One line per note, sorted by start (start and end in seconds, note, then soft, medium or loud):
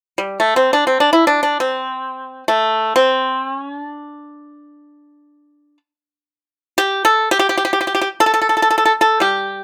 0.18 0.37 G3 soft
0.40 0.56 A3 soft
0.56 0.72 C4 soft
0.73 0.86 D4 medium
0.87 1.00 C4 soft
1.00 1.12 D4 soft
1.13 1.27 E4 medium
1.27 1.42 D4 medium
1.43 1.60 D4 medium
1.60 2.43 C4 soft
2.48 2.93 A3 soft
2.96 3.47 C4 medium
3.47 3.79 C#4 medium
3.79 5.77 D4 medium
6.78 7.03 G4 medium
7.05 7.28 A4 medium
7.31 7.38 G4 medium
7.39 7.47 G4 medium
7.49 7.55 G4 medium
7.57 7.63 G4 soft
7.65 7.71 G4 medium
7.73 7.79 G4 soft
7.81 7.86 G4 soft
7.87 7.93 G4 soft
7.95 8.00 G4 soft
8.01 8.08 G4 soft
8.20 8.25 A4 medium
8.26 8.32 A4 soft
8.34 8.40 A4 soft
8.42 8.48 A4 soft
8.49 8.55 A4 soft
8.57 8.61 A4 soft
8.62 8.69 A4 soft
8.70 8.77 A4 soft
8.78 8.84 A4 soft
8.85 8.92 A4 soft
9.01 9.21 A4 medium
9.20 9.64 G3 soft
9.20 9.64 G4 medium